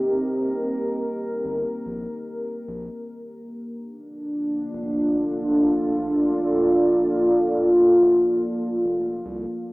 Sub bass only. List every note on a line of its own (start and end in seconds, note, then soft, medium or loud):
1.45 1.65 G1 medium
1.85 2.06 A#1 medium
2.68 2.88 A#1 medium
4.73 5.93 F1 loud
5.97 6.17 A#1 medium
8.02 8.23 F1 medium
8.84 9.21 F1 medium
9.25 9.46 C2 medium